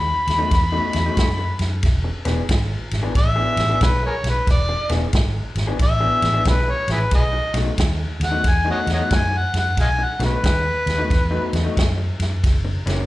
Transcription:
Already playing: fingered electric bass D#2, harmonica B5
0.27 fingered electric bass D#2, snare, ride
0.38 clean electric guitar B2 F#3 A3 D#4
0.51 fingered electric bass E2, muted clean electric guitar stroke, kick, snare, ride
0.72 clean electric guitar B2 F#3 A3 D#4
0.93 fingered electric bass E2, snare, ride
1.06 clean electric guitar B2 F#3 A3 D#4
1.17 fingered electric bass F#2, kick, snare, ride
1.39 muted clean electric guitar stroke
1.59 fingered electric bass F#2, snare, ride
1.83 fingered electric bass E1, kick, snare, ride
2.04 muted clean electric guitar stroke
2.25 fingered electric bass E1, clean electric guitar E3 B3 D4 G#4, snare, ride
2.49 fingered electric bass G#1, muted clean electric guitar stroke, kick, snare, ride
2.91 fingered electric bass G#1, snare, ride
3.03 clean electric guitar E3 B3 D4 G#4
3.14 fingered electric bass A1, harmonica E5, muted clean electric guitar stroke, kick, snare, ride
3.36 clean electric guitar E3 B3 D4 G#4
3.57 fingered electric bass A1, snare, ride
3.69 clean electric guitar E3 B3 D4 G#4
3.81 fingered electric bass B1, kick, snare, ride
3.85 harmonica B4
4.03 harmonica G#4 A#4 C#5, muted clean electric guitar stroke
4.24 fingered electric bass B1, snare, ride
4.30 harmonica B4
4.47 fingered electric bass E1, harmonica D5, kick, snare, ride
4.69 muted clean electric guitar stroke
4.89 fingered electric bass E1, clean electric guitar E3 B3 D4 G#4, snare, ride
5.13 fingered electric bass G#1, muted clean electric guitar stroke, kick, snare, ride
5.55 fingered electric bass G#1, snare, ride
5.67 clean electric guitar E3 B3 D4 G#4
5.79 fingered electric bass A1, muted clean electric guitar stroke, kick, snare, ride
5.84 harmonica E5
6.00 clean electric guitar E3 B3 D4 G#4
6.22 fingered electric bass A1, snare, ride
6.33 clean electric guitar E3 B3 D4 G#4
6.45 fingered electric bass B1, kick, snare, ride
6.50 harmonica B4
6.67 harmonica C#5, muted clean electric guitar stroke
6.88 fingered electric bass A1, snare, ride
6.92 harmonica E4 G#4 B4
7.11 fingered electric bass B1, harmonica G#4 B4 D#5, kick, snare, ride
7.33 muted clean electric guitar stroke
7.54 fingered electric bass B1, clean electric guitar B2 F#3 A3 D#4, snare, ride
7.77 fingered electric bass D#2, muted clean electric guitar stroke, kick, snare, ride
8.20 fingered electric bass D#2, snare, ride
8.24 harmonica F#5
8.31 clean electric guitar B2 F#3 A3 D#4
8.44 fingered electric bass E2, muted clean electric guitar stroke, kick, snare, ride
8.49 harmonica G#5
8.64 clean electric guitar B2 F#3 A3 D#4
8.71 harmonica C#5 D#5 F#5
8.87 fingered electric bass E2, snare, ride
8.94 harmonica C#5 D#5 F#5
8.98 clean electric guitar B2 F#3 A3 D#4
9.11 fingered electric bass F#2, kick, snare, ride
9.15 harmonica G#5
9.31 muted clean electric guitar stroke
9.37 harmonica F#5
9.54 fingered electric bass F#2, snare, ride
9.59 harmonica F#5
9.77 fingered electric bass B1, kick, snare, ride
9.81 harmonica D#5 F5 G#5
9.98 muted clean electric guitar stroke
10.04 harmonica F#5
10.19 fingered electric bass B1, clean electric guitar B2 F#3 A3 D#4, snare, ride
10.25 harmonica B4
10.43 fingered electric bass D#2, kick, snare, ride
10.86 fingered electric bass D#2, snare, ride
10.98 clean electric guitar B2 F#3 A3 D#4
11.10 fingered electric bass E2, kick, snare, ride
11.31 clean electric guitar B2 F#3 A3 D#4
11.53 fingered electric bass E2, snare, ride
11.64 clean electric guitar B2 F#3 A3 D#4
11.77 fingered electric bass F#2, kick, snare, ride
11.98 muted clean electric guitar stroke
12.20 fingered electric bass F#2, snare, ride
12.44 fingered electric bass F#1, kick, snare, ride
12.65 muted clean electric guitar stroke
12.86 fingered electric bass F#1, clean electric guitar F#2 E3 A#3 C#4, snare, ride

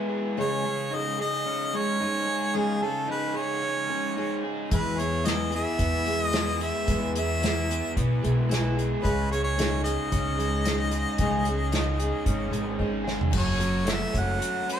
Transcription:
Already playing: twelve-string acoustic guitar G#3 B3 E4 G#4, overdriven electric guitar G#3 B3
0.09 overdriven electric guitar G#4
0.37 twelve-string acoustic guitar C#3 G#3 C#4 D#4 G#4, harmonica C#5
0.64 twelve-string acoustic guitar C#4 D#4 G#4
0.92 twelve-string acoustic guitar G#3 C#4 D#4 G#4, harmonica D#5
1.17 twelve-string acoustic guitar C#4 D#4 G#4, harmonica D#5
1.46 overdriven electric guitar C#4
1.73 overdriven electric guitar G#3, twelve-string acoustic guitar C#4 D#4 G#4, harmonica C#5
2.00 twelve-string acoustic guitar G#3 C#4 D#4 G#4
2.28 overdriven electric guitar G#4
2.54 twelve-string acoustic guitar C#3 G#3 C#4 D#4 G#4, harmonica G#4
2.81 twelve-string acoustic guitar C#4 D#4 G#4, harmonica A4
3.07 twelve-string acoustic guitar G#3 C#4 D#4 G#4
3.11 harmonica B4
3.33 twelve-string acoustic guitar C#4 D#4 G#4, harmonica C#5
3.62 overdriven electric guitar C#4
3.87 overdriven electric guitar G#3, twelve-string acoustic guitar C#4 D#4 G#4
4.17 twelve-string acoustic guitar G#3 C#4 D#4 G#4
4.44 overdriven electric guitar G#4
4.69 overdriven electric guitar E2, upright bass E2, twelve-string acoustic guitar E3 G#3 B3 E4 G#4, kick, closed hi-hat
4.74 harmonica B4
4.97 twelve-string acoustic guitar B3 E4 G#4, harmonica C#5, closed hi-hat
5.24 twelve-string acoustic guitar G#3 B3 E4 G#4, harmonica D#5, snare, closed hi-hat
5.52 twelve-string acoustic guitar B3 E4 G#4, closed hi-hat
5.56 harmonica E5
5.79 upright bass E2, overdriven electric guitar B3, kick, closed hi-hat
6.06 overdriven electric guitar G#3, twelve-string acoustic guitar B3 E4 G#4, closed hi-hat
6.24 harmonica D#5
6.31 twelve-string acoustic guitar G#3 B3 E4 G#4, snare, closed hi-hat
6.61 overdriven electric guitar G#4, harmonica E5, closed hi-hat
6.87 upright bass E2, overdriven electric guitar E2, twelve-string acoustic guitar E3 G#3 B3 E4 G#4, kick, closed hi-hat
7.15 twelve-string acoustic guitar B3 E4 G#4, harmonica E5, closed hi-hat
7.41 twelve-string acoustic guitar G#3 B3 E4 G#4, snare, closed hi-hat
7.66 twelve-string acoustic guitar B3 E4 G#4
7.70 overdriven electric guitar G#4, closed hi-hat
7.97 upright bass B1, overdriven electric guitar B3, kick, closed hi-hat
8.22 upright bass B1, overdriven electric guitar G#3, twelve-string acoustic guitar B3 E4 G#4, closed hi-hat
8.49 twelve-string acoustic guitar G#3 B3 E4 G#4, snare, closed hi-hat
8.77 overdriven electric guitar G#4, closed hi-hat
9.02 upright bass C#2, twelve-string acoustic guitar C#3 G#3 C#4 D#4 G#4, harmonica B4, kick, closed hi-hat
9.31 twelve-string acoustic guitar C#4 D#4 G#4, harmonica C#5, closed hi-hat
9.44 harmonica C#5
9.56 twelve-string acoustic guitar G#3 C#4 D#4 G#4, snare, closed hi-hat
9.84 twelve-string acoustic guitar C#4 D#4 G#4, harmonica D#5, closed hi-hat
10.12 upright bass C#2, overdriven electric guitar C#4, kick, closed hi-hat
10.37 overdriven electric guitar G#3, twelve-string acoustic guitar C#4 D#4 G#4, closed hi-hat
10.65 twelve-string acoustic guitar G#3 C#4 D#4 G#4, snare, closed hi-hat
10.91 overdriven electric guitar G#4, closed hi-hat
11.18 upright bass C#2, twelve-string acoustic guitar C#3 G#3 C#4 D#4 G#4, kick, closed hi-hat
11.45 twelve-string acoustic guitar C#4 D#4 G#4, closed hi-hat
11.72 twelve-string acoustic guitar G#3 C#4 D#4, snare, closed hi-hat
11.77 twelve-string acoustic guitar G#4
12.00 twelve-string acoustic guitar C#4 D#4 G#4, closed hi-hat
12.24 upright bass G#1, overdriven electric guitar C#4, kick, closed hi-hat
12.51 upright bass G#1, overdriven electric guitar G#3, twelve-string acoustic guitar C#4 D#4 G#4, closed hi-hat
12.79 twelve-string acoustic guitar G#3 C#4 D#4 G#4, kick
13.04 overdriven electric guitar G#4, snare
13.21 floor tom
13.31 upright bass F#1, overdriven electric guitar F#2, twelve-string acoustic guitar F#3 C#4 F#4 A4, kick, crash
13.38 harmonica C#5
13.58 overdriven electric guitar F#3, twelve-string acoustic guitar C#4 F#4 A4, closed hi-hat
13.85 twelve-string acoustic guitar F#3 C#4 F#4 A4, overdriven electric guitar A3, snare, closed hi-hat
13.92 harmonica E5
14.12 upright bass F#1, twelve-string acoustic guitar C#4 F#4 A4, kick, closed hi-hat
14.20 harmonica F#5
14.39 overdriven electric guitar F#4, closed hi-hat
14.66 overdriven electric guitar C#4, closed hi-hat
14.72 harmonica C#5

